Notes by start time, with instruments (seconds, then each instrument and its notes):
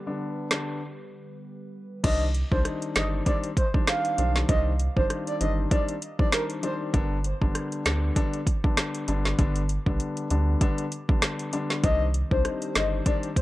Already playing: analog synth pad D3 G3 B3 G4 B4
0.06 grand piano D3 G3 B3 D4
0.51 grand piano D3 G3 B3 D4, cross-stick, snare
2.04 sub bass C2, grand piano D#3 G3 C4 D4, soft synth lead D#5, kick, closed hi-hat, crash
2.34 closed hi-hat
2.51 sub bass C2, grand piano D#3 G3 C4 D4, soft synth lead C5, kick
2.65 cross-stick, closed hi-hat
2.82 closed hi-hat
2.96 sub bass G1, grand piano D#3 G3 C4 D4, soft synth lead D#5, cross-stick, snare, closed hi-hat
3.26 grand piano D#3 G3 C4 D4, soft synth lead D5, kick, closed hi-hat
3.44 closed hi-hat
3.57 soft synth lead C5, kick, closed hi-hat
3.74 grand piano D#3 G3 C4 D4, kick
3.87 soft synth lead F5, cross-stick, snare, closed hi-hat
4.05 closed hi-hat
4.18 sub bass B1, grand piano D#3 G3 C4 D4, closed hi-hat
4.36 snare
4.49 sub bass C2, grand piano D#3 G3 C4 D4, soft synth lead D#5, kick, closed hi-hat
4.79 closed hi-hat
4.96 sub bass G1, grand piano D#3 G3 C4 D4, soft synth lead C5, kick
5.10 cross-stick, closed hi-hat
5.27 soft synth lead D5, closed hi-hat
5.40 sub bass G1, grand piano D#3 G3 C4 D4, soft synth lead D#5, closed hi-hat
5.71 grand piano D#3 G3 C4 D4, soft synth lead D5, kick, closed hi-hat
5.89 closed hi-hat
6.02 closed hi-hat
6.19 grand piano D#3 G3 C4 D4, soft synth lead D5, kick
6.32 soft synth lead A#4, cross-stick, snare, closed hi-hat
6.50 closed hi-hat
6.63 grand piano D#3 G3 C4 D4, soft synth lead C5, closed hi-hat
6.94 sub bass G1, grand piano D3 G3 B3 D4, kick, closed hi-hat
7.24 closed hi-hat
7.41 sub bass G1, grand piano D3 G3 B3 D4, kick
7.55 cross-stick, closed hi-hat
7.72 closed hi-hat
7.85 sub bass D2, grand piano D3 G3 B3 D4, cross-stick, snare, closed hi-hat
8.16 grand piano D3 G3 B3 D4, kick, closed hi-hat
8.33 closed hi-hat
8.47 kick, closed hi-hat
8.64 grand piano D3 G3 B3 D4, kick
8.77 cross-stick, snare, closed hi-hat
8.95 closed hi-hat
9.08 sub bass G1, grand piano D3 G3 B3 D4, closed hi-hat
9.25 snare
9.39 sub bass G1, grand piano D3 G3 B3 D4, kick, closed hi-hat
9.56 closed hi-hat
9.69 closed hi-hat
9.86 sub bass B1, grand piano D3 G3 B3 D4, kick
10.00 closed hi-hat
10.17 closed hi-hat
10.30 sub bass D2, grand piano D3 G3 B3 D4, closed hi-hat
10.61 grand piano D3 G3 B3 D4, kick, closed hi-hat
10.78 closed hi-hat
10.92 closed hi-hat
11.09 grand piano D3 G3 B3 D4, kick
11.22 cross-stick, snare, closed hi-hat
11.39 closed hi-hat
11.53 grand piano D3 G3 B3 D4, closed hi-hat
11.70 snare
11.83 sub bass C2, grand piano D#3 G3 C4 D4, analog synth pad D#3 C4 G4 C5, soft synth lead D#5, kick, closed hi-hat
12.14 closed hi-hat
12.31 sub bass C2, grand piano D#3 G3 C4 D4, soft synth lead C5, kick
12.45 cross-stick, closed hi-hat
12.62 closed hi-hat
12.75 sub bass G1, grand piano D#3 G3 C4 D4, soft synth lead D#5, cross-stick, snare, closed hi-hat
13.06 grand piano D#3 G3 C4 D4, soft synth lead D5, kick, closed hi-hat
13.23 closed hi-hat
13.36 soft synth lead C5, kick, closed hi-hat